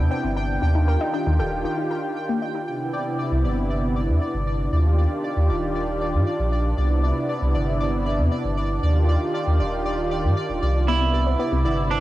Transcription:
Already playing: analog synth pad C3 B3 D4 E4, synth texture G5
0.11 synth arpeggio sound C4
0.24 sub bass G1, synth arpeggio sound C4
0.37 synth arpeggio sound D4
0.62 sub bass D#2, analog synth pad D#3 F4 G4, synth arpeggio sound D4
0.75 synth arpeggio sound D#4
0.88 synth arpeggio sound A#4
1.01 synth arpeggio sound D#4
1.14 synth arpeggio sound D4
1.26 sub bass D#2, synth arpeggio sound D#3
1.39 sub bass D#1, synth arpeggio sound A4
1.65 synth arpeggio sound D#4
1.78 synth arpeggio sound D#4
1.91 synth arpeggio sound A#4
2.29 synth arpeggio sound A#3
2.42 synth arpeggio sound D#4
2.55 synth arpeggio sound D#4
2.67 analog synth pad C3 B3 D4 E4, synth texture D5
3.31 sub bass C2
3.44 sub bass G1
4.08 sub bass E2
4.34 sub bass G1
4.73 sub bass D#2, analog synth pad D#3 F4 G4
5.37 sub bass D#2
5.50 sub bass D#1
6.14 sub bass G2
6.39 sub bass A#1
6.78 sub bass C2, analog synth pad C3 B3 E4
7.42 sub bass C2
7.54 sub bass G1
8.19 sub bass E2
8.44 sub bass G1
8.83 sub bass D#2, analog synth pad D#3 F4 G4
9.47 sub bass D#2
9.60 sub bass D#1
10.24 sub bass G2
10.49 sub bass D#1
10.62 sub bass C2
10.88 analog synth pad C3 B3 E4, synth arpeggio sound B3, clean electric guitar E4
11.01 synth arpeggio sound C4
11.14 synth arpeggio sound G4
11.27 synth arpeggio sound C4
11.39 synth arpeggio sound B3
11.52 sub bass C2, synth arpeggio sound C3
11.65 sub bass G1, synth arpeggio sound E4
11.91 synth arpeggio sound C4, clean electric guitar D4

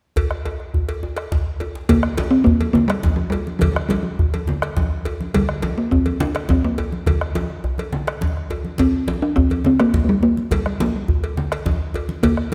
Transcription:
0.16 bombo low, cowbell, djembe bass
0.31 bombo rim
0.45 bombo rim, cowbell, djembe tone
0.60 bombo rim
0.74 bombo low, djembe bass
0.89 cowbell, djembe slap
1.03 djembe tone
1.17 bombo rim, cowbell
1.32 bombo rim, bombo low, djembe slap, djembe bass
1.60 cowbell, djembe tone
1.75 djembe slap
1.89 talking drum A#3, bombo low, cowbell, high conga, low conga, djembe bass
2.03 bombo rim
2.17 cowbell, djembe slap, djembe tone, high conga
2.31 talking drum C4
2.44 talking drum A#3, bombo low, djembe bass
2.61 cowbell, high conga
2.73 talking drum A#3, djembe slap, djembe tone, low conga
2.88 talking drum G3, bombo rim, cowbell, djembe slap
3.03 bombo low, djembe slap, high conga, djembe bass
3.16 talking drum F3, djembe slap
3.30 talking drum G3, cowbell, djembe tone
3.47 high conga
3.59 talking drum F3, bombo low, cowbell, high conga, low conga, djembe bass
3.72 talking drum F3 G3
3.76 bombo rim
3.89 talking drum G3, cowbell, djembe slap, high conga, djembe tone
4.03 talking drum F3
4.19 bombo low, djembe bass
4.34 cowbell, high conga
4.47 djembe slap, djembe tone, low conga
4.62 bombo rim, cowbell
4.77 bombo low, djembe slap, high conga, djembe bass
4.92 djembe slap
5.05 cowbell, djembe tone
5.21 high conga
5.34 talking drum G3, bombo low, cowbell, high conga, djembe bass, low conga
5.49 bombo rim
5.62 cowbell, djembe slap, djembe tone, high conga
5.78 talking drum A#3
5.91 talking drum C4, bombo low, djembe bass
6.06 cowbell, high conga
6.20 talking drum D4, djembe slap, djembe tone, low conga
6.35 bombo rim, cowbell, djembe slap
6.49 talking drum C4, bombo low, djembe slap, high conga, djembe bass
6.64 talking drum A#3, djembe slap
6.78 cowbell, djembe tone
6.92 high conga
7.06 talking drum F3, bombo low, cowbell, low conga, djembe bass
7.21 bombo rim
7.35 bombo rim, cowbell, djembe slap, high conga, djembe tone
7.50 bombo rim
7.64 bombo rim, djembe slap, djembe bass
7.78 bombo rim, cowbell, high conga
7.93 djembe slap, high conga, djembe tone, low conga
8.07 bombo rim, cowbell
8.21 bombo low, djembe slap, high conga
8.36 bombo rim, high conga
8.50 bombo rim, cowbell, djembe tone, high conga
8.64 high conga
8.78 talking drum C4, bombo low, cowbell, high conga, low conga, djembe bass
9.08 cowbell, djembe slap, high conga, djembe tone
9.22 talking drum D4
9.36 talking drum C4, bombo low, djembe bass
9.50 cowbell, high conga
9.64 talking drum C4, djembe slap, djembe tone, low conga
9.80 talking drum A#3, bombo rim, cowbell, djembe slap
9.94 bombo low, djembe slap, high conga, djembe bass
10.04 talking drum A#3, djembe slap
10.09 talking drum G3
10.23 talking drum A#3, djembe tone
10.37 high conga
10.51 talking drum G3, bombo low, cowbell, high conga, djembe bass, low conga
10.66 talking drum G3, bombo rim
10.80 talking drum A#3, cowbell, djembe slap, high conga, djembe tone
10.96 talking drum G3
11.08 bombo low, djembe bass
11.24 cowbell
11.37 djembe slap, djembe tone, low conga
11.52 bombo rim, cowbell, djembe slap
11.66 bombo low, djembe slap, high conga, djembe bass
11.80 djembe slap
11.94 cowbell, djembe tone
12.09 high conga
12.23 talking drum A#3, bombo low, cowbell, high conga, djembe bass, low conga
12.37 bombo rim

